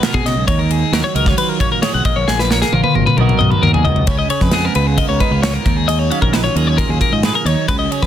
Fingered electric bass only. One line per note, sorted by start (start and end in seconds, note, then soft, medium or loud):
0.14 0.23 B2 medium
0.24 0.33 B2 loud
0.36 0.45 B1 medium
0.48 0.82 D#2 medium
0.92 1.01 D#2 medium
1.15 1.32 C#2 medium
1.94 2.03 B1 medium
2.05 2.14 A#1 medium
2.16 2.25 A#1 medium
2.28 2.62 A#1 medium
2.73 2.81 A#1 medium
2.96 3.04 G#1 medium
3.18 3.52 B1 medium
3.63 3.83 D#2 medium
3.85 4.05 C#2 medium
4.07 4.25 C#2 medium
4.41 4.67 F2 medium
4.75 5.01 C#2 medium
5.09 5.18 C#2 medium
5.31 5.57 C#2 medium
5.66 6.09 D#2 medium
6.22 6.48 A#1 medium
6.55 6.81 D#2 medium
6.89 6.98 D#2 medium
7.12 7.29 G#2 medium
7.45 7.54 D#2 medium
7.68 7.86 C#2 medium
8.02 8.06 F2 medium